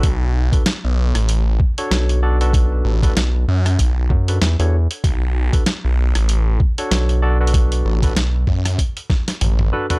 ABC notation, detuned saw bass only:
X:1
M:4/4
L:1/16
Q:"Swing 16ths" 1/4=96
K:Bm
V:1 name="Detuned saw bass" clef=bass
B,,,3 z2 B,,,2 A,,,3 z6 | z2 A,,,2 z2 F,,2 B,,,2 z6 | B,,,3 z2 B,,,2 A,,,3 z6 | z2 A,,,2 z2 F,,2 z4 A,,,2 z2 |]